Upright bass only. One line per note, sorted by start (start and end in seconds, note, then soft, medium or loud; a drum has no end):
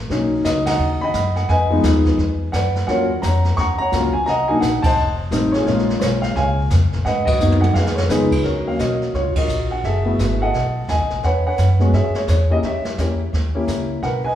0.10 0.44 B1 medium
0.45 0.78 C#2 medium
0.79 1.13 D#2 medium
1.14 1.48 F#2 medium
1.49 1.83 F2 medium
1.83 2.17 D#2 medium
2.18 2.52 E2 medium
2.53 2.87 F#2 medium
2.88 3.22 D#2 medium
3.22 3.56 F2 medium
3.57 3.78 D#2 medium
3.79 muted upright bass stroke soft
3.92 4.12 C#2 medium
4.14 muted upright bass stroke soft
4.27 4.61 C2 medium
4.62 4.82 A#1 medium
4.83 muted upright bass stroke soft
4.96 5.30 F1 medium
5.31 5.65 A1 loud
5.66 6.00 A#1 medium
6.01 6.35 B1 medium
6.36 6.69 C#2 medium
6.70 6.84 F2 medium
6.83 6.93 C#2 medium
6.94 7.05 A#1 medium
7.05 7.39 G#2 medium
7.39 7.74 F#2 medium
7.74 8.08 F2 medium
8.09 8.43 C#2 medium
8.44 8.78 D#2 medium
8.79 9.13 B1 medium
9.14 9.34 C#2 medium
9.35 muted upright bass stroke soft
9.48 9.82 A#1 medium
9.84 10.18 F#1 medium
10.18 10.52 G#1 medium
10.53 10.87 B1 medium
10.88 11.00 D#2 medium
11.00 11.11 B1 soft
11.12 11.23 A1 medium
11.23 11.57 E2 medium
11.58 11.92 F#2 medium
11.93 12.13 G#2 medium
12.15 muted upright bass stroke soft
12.28 12.62 E2 medium
12.63 12.97 D#2 medium
12.98 13.32 E2 medium
13.33 13.66 D#2 medium
13.67 14.01 C#2 medium
14.03 14.35 B1 medium